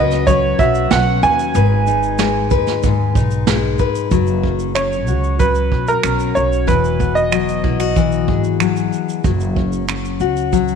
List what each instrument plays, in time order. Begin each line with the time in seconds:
Already playing: upright bass C#2, steel-string acoustic guitar F#3 C#4 F#4 B4, upright piano D#5
0.11 snare, shaker
0.27 steel-string acoustic guitar F#3, upright piano C#5, kick, shaker
0.59 upright bass B1, steel-string acoustic guitar F#4, upright piano E5, kick, shaker
0.75 shaker
0.91 upright bass B1, steel-string acoustic guitar C#4, upright piano F#5, snare, shaker
1.23 upright bass D#2, steel-string acoustic guitar B4, upright piano G#5, shaker
1.39 shaker
1.55 upright bass G#1, steel-string acoustic guitar G#2 B4, shaker
1.87 steel-string acoustic guitar D#4, shaker
2.03 shaker
2.19 steel-string acoustic guitar G#3, snare, shaker
2.51 upright bass D#2, steel-string acoustic guitar B4, kick, shaker
2.67 snare, shaker
2.83 steel-string acoustic guitar G#2, kick, shaker
3.15 upright bass B1, steel-string acoustic guitar D#4, kick, shaker
3.31 shaker
3.47 steel-string acoustic guitar G#3, snare, shaker
3.79 steel-string acoustic guitar B4, kick, shaker
3.95 shaker
4.11 upright bass F#1, steel-string acoustic guitar F#3, kick, shaker
4.27 shaker
4.43 steel-string acoustic guitar C#4, kick
4.59 shaker
4.75 steel-string acoustic guitar C#4, upright piano C#5, finger snap, shaker
4.92 shaker
5.07 upright bass C#2, steel-string acoustic guitar F#4, shaker
5.24 shaker
5.39 steel-string acoustic guitar F#3, upright piano B4, kick, shaker
5.55 shaker
5.72 upright bass B1, kick
5.88 upright piano A#4, shaker
6.03 upright bass B1, steel-string acoustic guitar C#4, finger snap, shaker
6.20 shaker
6.35 upright bass B1, upright piano C#5, shaker
6.52 shaker
6.67 upright bass E1, steel-string acoustic guitar E3, upright piano B4, kick, shaker
6.84 shaker
7.00 steel-string acoustic guitar B3, kick, shaker
7.15 upright piano D#5, shaker
7.32 steel-string acoustic guitar F#3, finger snap, shaker
7.49 shaker
7.64 upright bass B1, steel-string acoustic guitar E4, kick
7.80 steel-string acoustic guitar F#4, finger snap, shaker
7.96 steel-string acoustic guitar E3, kick, shaker
8.12 shaker
8.28 upright bass G#1, steel-string acoustic guitar G#4, kick
8.44 shaker
8.60 steel-string acoustic guitar F#3, finger snap, shaker
8.76 shaker
8.93 shaker
9.09 shaker
9.24 upright bass F#1, steel-string acoustic guitar F#3, kick, shaker
9.40 shaker
9.56 steel-string acoustic guitar C#4, kick
9.72 shaker
9.89 steel-string acoustic guitar C#4, finger snap, shaker
10.05 shaker
10.20 upright bass C#2, steel-string acoustic guitar F#4, shaker
10.37 shaker
10.53 steel-string acoustic guitar F#3, kick, shaker
10.68 shaker